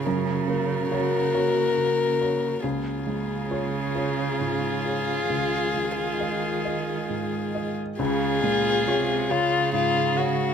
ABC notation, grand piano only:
X:1
M:6/8
L:1/8
Q:3/8=46
K:Db
V:1 name="Grand piano"
G,, B, [Gd] [Gd] D, [Gd] | D,, A, [Fd] [Fd] A,, [Fd] | D,, A, [Fe] [Fe] A,, [Fe] | D,, A, [Fd] [Fd] A,, [df] |]